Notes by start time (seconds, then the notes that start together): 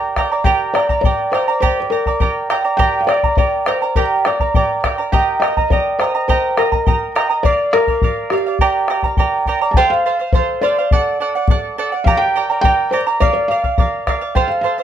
Already playing: G4 A#4 D5 G5 A#5
0.16 A#4 D5 G5 A#5, bombo rim, bombo low
0.32 A#4 D5 A#5
0.44 G4 A#4 D5 G5 A#5, bombo low
0.74 A#4 D5 G5 A#5, bombo rim
0.89 A#4 D5 A#5, bombo low
1.01 D5 G5, bombo low
1.05 A#4 D5 A#5
1.32 A#4 C5 D5 G5 A#5, bombo rim
1.48 A#4 D5 A#5
1.60 G4 A#4 C5 D5 G5 A#5, bombo low
1.80 C5
1.90 A#4 D5 G5 A#5
2.06 A#4 D5 A#5, bombo low
2.20 A#4 D5 G5 A#5, bombo low
2.50 A#4 D5 G5 A#5, bombo rim
2.65 A#4 D5 A#5
2.77 G4 A#4 D5 G5 A#5, bombo low
3.01 F5
3.07 A#4 D5 G5 A#5, bombo rim
3.23 A#4 D5 A#5, bombo low
3.37 A#4 D5 G5 A#5, bombo low
3.66 A#4 C5 D5 G5 A#5, bombo rim
3.82 A#4 D5 A#5
3.95 G4 A#4 D5 G5 A#5, bombo low
4.25 A#4 D5 G5 A#5, bombo rim
4.40 A#4 D5 A#5, bombo low
4.54 A#4 D5 G5 A#5, bombo low
4.84 A#4 D5 G5 A#5, bombo rim, bombo low
4.98 A#4 D5 A#5
5.12 G4 A#4 D#5 G5 A#5, bombo low
5.40 A#4 D#5 G5 A#5, bombo rim
5.57 A#4 D#5 A#5, bombo low
5.70 A#4 D5 D#5 G5 A#5, bombo low
5.99 A#4 C5 D#5 G5 A#5, bombo rim
6.15 A#4 D#5 A#5
6.28 G4 A#4 C5 D#5 G5 A#5, bombo low
6.57 A#4 D#5 G5 A#5, bombo rim
6.72 A#4 D#5 A#5, bombo low
6.86 A#4 D#5 G5 A#5, bombo low
7.15 A#4 D#5 G5 A#5, bombo rim
7.29 A#4 D#5 A#5
7.43 A#4 D5 F5, bombo low
7.73 A#4 D5 F5, bombo rim
7.87 D5 F5, bombo low
8.02 A#4 D5 F5, bombo low
8.30 G4 A#4 D5 F5, bombo rim
8.46 D5 F5
8.59 G4 A#4 D5 G5 A#5, bombo low
8.88 A#4 D5 G5 A#5, bombo rim
9.03 A#4 D5 A#5, bombo low
9.17 A#4 D5 G5 A#5, bombo low
9.46 A#4 D5 G5 A#5, bombo low
9.61 A#4 D5 A#5
9.71 A5, bombo low
9.77 A4 C5 F5 G5
9.90 F5
10.06 A4 C5 F5
10.19 C5 F5
10.32 A4 C5 F5, bombo low
10.61 A4 C5 D5 F5
10.78 C5 F5
10.91 A4 D5 F#5, bombo low
11.20 A4 D5 F#5
11.35 D5 F#5
11.48 A4 D5 F#5, bombo low
11.78 A4 D5 F#5
11.92 D5 F#5
12.04 G4 A#4 D5 F5 G5 A#5, bombo low
12.17 G5
12.36 A#4 D5 G5 A#5
12.50 A#4 D5 A#5
12.61 A#4 D5 G5 A#5, bombo low
12.91 A#4 C5 D5 G5 A#5
13.07 A#4 D5 A#5
13.20 A#4 D5 F5, bombo low
13.33 D5
13.48 A#4 D5 F5
13.64 D5 F5, bombo low
13.78 A#4 D5 F5, bombo low
14.07 A#4 D5 F5, bombo rim, bombo low
14.21 D5 F5
14.35 A4 C5 F5 G5, bombo low
14.48 F5
14.61 A4 C5 F5
14.65 F5
14.78 C5 F5